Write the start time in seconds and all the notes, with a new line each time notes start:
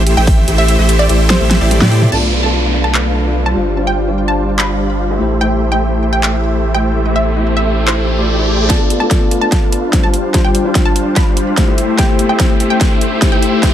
Already playing: A1 A3 E4 G4 C5 E5
0.07 G4, closed hi-hat
0.17 A1 A3 E4 G4 C5 E5 G5
0.27 kick, open hi-hat
0.38 E5
0.48 A1 A3 E4 G4 C5 E5, closed hi-hat
0.58 E5
0.68 G4, closed hi-hat
0.79 A1 A3 E4 G4 C5 E5
0.89 closed hi-hat
0.99 D5 E5
1.09 A1 A3 E4 G4 C5 E5, closed hi-hat
1.30 G4 C5, snare, closed hi-hat
1.40 A1 A3 E4 G4 C5 E5
1.51 snare, closed hi-hat
1.61 A1 A3 E4 G4 C5 D5 E5
1.71 G4, closed hi-hat, mid tom
1.81 A2 A3 E4 G4 C5 D5, snare
1.92 G4, open hi-hat
2.02 E5, mid tom
2.10 B1 A3 B3 D4 F4 A4 B4 D5 F5 A5, crash, downlifter
2.43 A3 D4 F4 B4 F5 A5
2.74 A3 D4 F4 B4 F5
2.84 A5
2.94 clap
3.05 A3 D4 F4 B4 F5
3.46 G3 D4 F4 C5 F5 A5
3.54 G1 G3 D4 F4 C5
3.77 G3 D4 F4 C5 F5
3.87 G5
4.08 G3 D4 F4 C5 F5
4.28 A5
4.38 G3 D4 F4 C5 F5
4.59 B5, clap
4.69 G3 D4 F4 C5 F5
5.10 A3 E4 G4 C5 E5
5.19 A1 A3 E4 G4 C5
5.41 A3 E4 G4 C5 E5 G5, riser
5.72 A3 E4 G4 C5 E5 G5
6.03 A3 E4 G4 C5 E5
6.13 G5
6.23 clap
6.34 A3 E4 G4 C5 E5
6.75 A3 E4 G4 C5 E5 G5
7.05 A3 E4 G4 C5 E5
7.16 E5
7.36 A3 E4 G4 C5 E5
7.57 E5
7.67 A3 E4 G4 C5 E5
7.87 C5, clap
7.98 A3 E4 G4 C5 E5
8.18 A3 E4 G4 C5 D5
8.39 A3 E4 G4 C5 D5
8.68 A3 B3 D4 F4 A4 B4 D5 F5 A5, kick, snare, closed hi-hat, riser
8.90 closed hi-hat
9.00 A3 B3 D4 F4 A4 B4 D5 F5 A5
9.11 kick, snare, closed hi-hat
9.31 A3 D4 F4 B4 F5, closed hi-hat
9.41 A5
9.52 kick, snare, closed hi-hat
9.62 A3 D4 F4 B4 F5
9.72 closed hi-hat
9.92 G3 D4 F4 C5, kick, snare, closed hi-hat
10.04 G3 D4 F4 C5 F5 A5
10.14 closed hi-hat
10.33 G3 D4 F4 C5 F5, kick, snare, closed hi-hat
10.45 G5
10.55 closed hi-hat
10.64 G3 D4 F4 C5 F5
10.75 kick, snare, closed hi-hat
10.86 A5
10.96 G3 D4 F4 C5 F5, closed hi-hat
11.16 B5, kick, snare, closed hi-hat
11.27 G3 D4 F4 C5 F5
11.37 closed hi-hat
11.56 A3 E4 G4 C5, kick, snare, closed hi-hat
11.68 A3 E4 G4 C5 E5
11.78 closed hi-hat
11.98 A3 E4 G4 C5 E5 G5, kick, snare, closed hi-hat
12.19 closed hi-hat
12.29 A3 E4 G4 C5 E5 G5
12.40 kick, snare, closed hi-hat
12.60 A3 E4 G4 C5 E5, closed hi-hat
12.70 G5
12.81 kick, snare, closed hi-hat
12.91 A3 E4 G4 C5 E5
13.01 closed hi-hat
13.21 A3 E4 G4 C5, kick, snare, closed hi-hat
13.32 A3 E4 G4 C5 E5 G5
13.42 closed hi-hat
13.62 A3 E4 G4 C5 E5, kick, snare, closed hi-hat